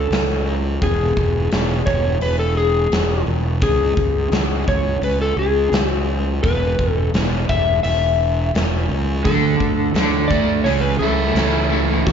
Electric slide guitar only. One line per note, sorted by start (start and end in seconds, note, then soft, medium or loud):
0.00 0.47 A4 medium
0.83 1.91 G#4 medium
1.86 2.19 C#5 medium
2.22 2.39 B4 medium
2.39 2.56 A4 medium
2.57 3.24 G#4 medium
3.63 4.64 G#4 medium
4.68 5.01 C#5 medium
5.04 5.21 B4 medium
5.21 5.39 A4 medium
5.39 5.88 G#4 medium
5.88 6.05 F#4 medium
6.43 6.93 B4 medium
6.93 7.10 A4 medium
7.49 7.82 E5 medium
7.83 8.85 E5 medium
9.25 10.34 A4 medium
10.28 10.64 D5 medium
10.64 10.83 C#5 medium
10.81 10.99 B4 medium
10.99 11.67 A4 medium
12.07 12.12 G#4 medium